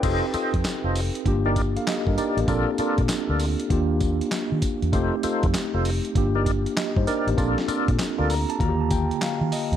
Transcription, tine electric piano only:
0.00 0.22 B4 medium
0.00 0.22 G5 medium
0.05 1.24 G4 medium
0.05 0.13 G#4 medium
0.12 1.28 A4 medium
1.25 1.56 A#3 medium
1.25 1.56 D4 medium
1.25 1.56 F4 medium
1.25 1.57 G4 medium
1.77 1.87 A4 medium
1.77 1.87 F5 medium
1.88 2.07 G4 medium
1.88 2.06 D#5 medium
2.07 2.37 D4 medium
2.07 2.36 A#4 medium
2.38 2.67 A#3 medium
2.38 2.67 G4 medium
2.47 3.68 C4 medium
2.47 3.68 D4 medium
2.47 3.69 F4 medium
2.47 3.69 A4 medium
3.70 4.90 A#3 medium
3.70 4.91 D4 medium
3.70 4.91 F4 medium
3.70 4.91 G4 medium
4.92 6.13 A3 medium
4.92 6.13 C4 medium
4.92 6.14 D#4 medium
4.92 6.14 G4 medium
6.15 6.75 A#3 medium
6.15 6.76 D4 medium
6.15 6.76 F4 medium
6.15 6.77 G4 medium
6.77 6.96 G4 medium
6.77 6.96 D#5 medium
6.96 7.07 D#4 medium
6.96 7.07 C5 medium
7.07 7.27 D4 medium
7.07 7.26 A#4 medium
7.28 7.57 A#3 medium
7.28 7.57 G4 medium
7.37 8.57 C4 medium
7.37 8.58 D4 medium
7.37 8.58 F4 medium
7.37 8.59 A4 medium
8.30 8.49 A#5 medium
8.50 8.60 A5 medium
8.60 9.77 D3 medium
8.60 9.77 A#3 medium
8.60 9.77 F4 medium
8.60 8.70 F#4 medium
8.60 8.79 A#5 medium
8.68 9.77 G4 medium
8.80 8.90 A5 medium
8.91 9.20 G5 medium
9.22 9.50 F5 medium
9.52 9.77 D#5 medium

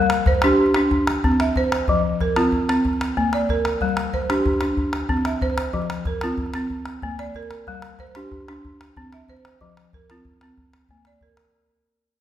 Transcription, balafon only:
0.00 0.27 G3 medium
0.27 0.76 C5 medium
0.44 0.75 D4 medium
0.44 0.92 G4 medium
0.76 0.92 D4 medium
1.24 1.56 C4 medium
1.41 1.89 E5 medium
1.57 1.89 C5 medium
1.89 2.21 F3 medium
2.21 2.69 A#4 medium
2.37 2.68 C4 medium
2.37 2.85 F4 medium
2.69 2.85 C4 medium
3.17 3.49 A#3 medium
3.34 3.82 D5 medium
3.50 3.82 A#4 medium
3.82 4.14 G3 medium
4.14 4.62 C5 medium
4.30 4.60 D4 medium
4.30 4.78 G4 medium
4.62 4.78 D4 medium
5.09 5.42 C4 medium
5.26 5.75 E5 medium
5.42 5.75 C5 medium
5.74 6.06 F3 medium
6.07 6.55 A#4 medium
6.23 6.54 C4 medium
6.23 6.71 F4 medium
6.55 6.71 C4 medium
7.03 7.36 A#3 medium
7.19 7.68 D5 medium
7.36 7.68 A#4 medium
7.68 8.00 G3 medium
8.00 8.48 C5 medium
8.16 8.47 D4 medium
8.16 8.64 G4 medium
8.49 8.65 D4 medium
8.97 9.29 C4 medium
9.14 9.62 E5 medium
9.29 9.61 C5 medium
9.61 9.93 F3 medium
9.94 10.42 A#4 medium
10.11 10.41 C4 medium
10.11 10.58 F4 medium
10.43 10.58 C4 medium
10.91 11.22 A#3 medium
11.07 11.55 D5 medium
11.23 11.55 A#4 medium

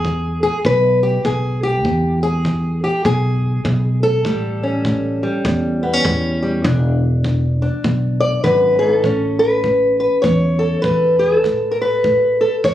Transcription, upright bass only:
0.00 0.47 E2 loud
0.65 1.16 B1 medium
1.25 1.85 B1 medium
1.85 2.87 E2 loud
3.05 3.56 B1 medium
3.65 4.25 B1 loud
4.25 5.27 A1 loud
5.45 5.96 E2 medium
6.05 6.66 E2 loud
6.65 7.67 E1 loud
7.84 8.36 B1 medium
8.44 9.04 G#1 medium
9.04 10.06 A1 loud
10.24 10.75 E2 medium
10.84 11.44 E2 medium
11.44 12.46 A1 loud
12.64 12.74 E2 medium

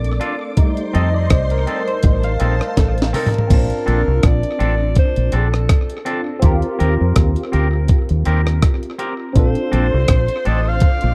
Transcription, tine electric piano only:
0.00 0.53 A3 medium
0.00 0.53 C4 medium
0.00 0.53 D4 medium
0.57 1.63 G3 medium
0.57 1.63 A3 medium
0.57 1.63 D#4 medium
0.95 1.13 D#5 loud
1.14 1.31 D5 medium
1.30 1.51 C5 medium
1.51 1.89 A#4 medium
1.88 2.22 C5 medium
2.24 3.30 F5 loud
3.47 6.01 C4 medium
3.47 3.57 C#4 medium
3.51 6.03 F4 medium
3.51 6.04 A5 medium
3.56 6.05 D4 medium
6.05 6.38 C4 soft
6.05 6.43 D4 soft
6.05 6.41 F4 soft
6.05 6.44 A4 medium
6.39 9.30 C4 medium
6.39 9.31 F4 medium
6.44 9.32 G4 medium
6.44 9.33 A#4 medium
9.33 11.14 C4 medium
9.33 11.14 D4 medium
9.37 11.14 F4 medium
9.37 11.14 A4 medium

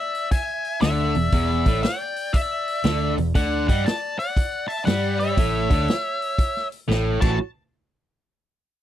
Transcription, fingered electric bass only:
0.82 1.13 D2 medium
1.16 1.32 E1 medium
1.32 1.64 E1 medium
1.66 1.82 A1 medium
2.84 3.16 D2 medium
3.18 3.34 E1 medium
3.35 3.66 D2 medium
3.69 3.84 G2 medium
4.87 5.34 G2 medium
5.37 5.68 A1 medium
5.71 5.87 D2 medium
6.89 7.19 A1 medium
7.22 7.38 A1 loud

